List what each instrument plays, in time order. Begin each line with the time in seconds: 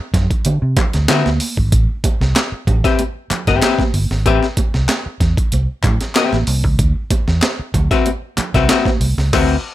0.14 fingered electric bass F#2, kick, snare, closed hi-hat, muted conga, low conga
0.31 kick, closed hi-hat
0.45 fingered electric bass D3, closed hi-hat, muted conga
0.62 fingered electric bass C3
0.77 kick, clap, closed hi-hat, muted conga, low conga
0.93 fingered electric bass D2, snare, closed hi-hat
1.08 fingered electric bass D3, hollow-body jazz guitar C4 F#4 B4 E5, snare, clap, closed hi-hat, high conga
1.26 fingered electric bass D2, snare, high conga
1.40 open hi-hat
1.57 fingered electric bass G#1, kick
1.72 fingered electric bass A1, kick, closed hi-hat
2.04 kick, closed hi-hat, muted conga
2.21 fingered electric bass C2, snare
2.36 snare, clap, closed hi-hat, high conga
2.52 muted fingered electric bass stroke
2.67 fingered electric bass A1, kick, closed hi-hat, muted conga, low conga
2.84 hollow-body jazz guitar C4 G4 B4 E5, kick, snare, closed hi-hat
2.99 closed hi-hat, muted conga
3.30 muted fingered electric bass stroke, clap, closed hi-hat, muted conga, low conga
3.47 fingered electric bass G1, hollow-body jazz guitar C4 G4 B4 E5, kick, snare, closed hi-hat
3.62 hollow-body jazz guitar C4 G4 B4 E5, snare, clap, closed hi-hat, high conga
3.79 kick, snare, high conga
3.94 fingered electric bass G1, open hi-hat
4.11 fingered electric bass G#1, snare
4.26 fingered electric bass A1, hollow-body jazz guitar C4 G4 B4 E5, kick, closed hi-hat
4.43 snare
4.57 kick, closed hi-hat, muted conga
4.74 fingered electric bass C2, snare
4.89 snare, clap, closed hi-hat, high conga
5.06 muted fingered electric bass stroke
5.20 fingered electric bass E2, kick, snare, closed hi-hat
5.37 kick, closed hi-hat
5.52 fingered electric bass C2, closed hi-hat, muted conga
5.83 fingered electric bass A2, kick, clap, closed hi-hat, muted conga, low conga
6.01 snare, closed hi-hat
6.15 hollow-body jazz guitar C4 G4 B4 E5, snare, clap, closed hi-hat, high conga
6.32 fingered electric bass A1, snare, high conga
6.47 fingered electric bass C2, open hi-hat
6.64 fingered electric bass C#2, kick
6.79 fingered electric bass D2, kick, closed hi-hat
7.10 kick, closed hi-hat, muted conga
7.28 fingered electric bass E2, snare
7.42 snare, clap, closed hi-hat, high conga
7.59 muted fingered electric bass stroke
7.74 fingered electric bass D2, kick, closed hi-hat, muted conga, low conga
7.91 hollow-body jazz guitar C4 F#4 B4 E5, kick, snare, closed hi-hat
8.06 closed hi-hat, muted conga
8.37 muted fingered electric bass stroke, clap, closed hi-hat, muted conga, low conga
8.54 fingered electric bass C2, hollow-body jazz guitar C4 F#4 B4 E5, kick, snare, closed hi-hat
8.69 hollow-body jazz guitar C4 F#4 B4 E5, snare, clap, closed hi-hat, high conga
8.85 kick, snare, high conga
9.00 fingered electric bass C2, open hi-hat
9.18 fingered electric bass C#2, snare
9.33 fingered electric bass D2, hollow-body jazz guitar C4 F#4 B4 E5, kick, snare, crash